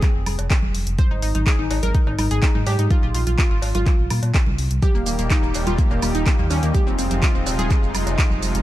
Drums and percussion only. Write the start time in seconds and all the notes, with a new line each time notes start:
0.02 kick, clap, closed hi-hat
0.26 open hi-hat, high conga, high woodblock
0.39 closed hi-hat, cowbell
0.50 kick, clap, closed hi-hat
0.63 high conga
0.75 open hi-hat
0.87 closed hi-hat
0.98 kick, closed hi-hat, high conga
1.22 open hi-hat
1.35 closed hi-hat, high conga
1.47 kick, clap, closed hi-hat
1.71 open hi-hat, cowbell
1.83 closed hi-hat, high conga
1.95 kick, closed hi-hat
2.07 cowbell, high bongo
2.18 open hi-hat, high conga, high woodblock
2.31 closed hi-hat
2.43 kick, clap, closed hi-hat
2.55 high conga
2.67 open hi-hat, cowbell
2.79 closed hi-hat
2.90 kick, closed hi-hat, high conga
3.15 open hi-hat
3.27 closed hi-hat, high conga
3.38 kick, clap, closed hi-hat
3.62 open hi-hat, cowbell
3.75 closed hi-hat, high bongo, high conga
3.86 kick, clap, closed hi-hat
4.10 open hi-hat, high bongo, high conga, high woodblock
4.23 closed hi-hat, cowbell
4.34 kick, clap, closed hi-hat
4.46 high bongo, high conga
4.58 open hi-hat
4.71 closed hi-hat
4.82 kick, closed hi-hat, high conga, shaker
4.95 shaker
5.06 open hi-hat, shaker
5.18 closed hi-hat, high conga, shaker
5.30 kick, clap, closed hi-hat, shaker
5.43 shaker
5.54 open hi-hat, cowbell, shaker
5.67 closed hi-hat, high conga, shaker
5.78 kick, closed hi-hat, shaker
5.91 cowbell, high bongo, shaker
6.02 open hi-hat, high conga, high woodblock, shaker
6.15 closed hi-hat, shaker
6.26 kick, clap, closed hi-hat, shaker
6.39 high conga, shaker
6.50 open hi-hat, cowbell, shaker
6.63 closed hi-hat, shaker
6.75 kick, closed hi-hat, high conga, shaker
6.87 shaker
6.99 open hi-hat, shaker
7.10 closed hi-hat, high conga, shaker
7.23 kick, clap, closed hi-hat, shaker
7.35 shaker
7.46 open hi-hat, cowbell, shaker
7.58 closed hi-hat, high conga, shaker
7.71 kick, clap, closed hi-hat, shaker
7.83 shaker
7.94 open hi-hat, high conga, high woodblock, shaker
8.07 closed hi-hat, cowbell, shaker
8.19 kick, clap, closed hi-hat, shaker
8.30 high conga, shaker
8.43 open hi-hat, shaker
8.55 closed hi-hat, shaker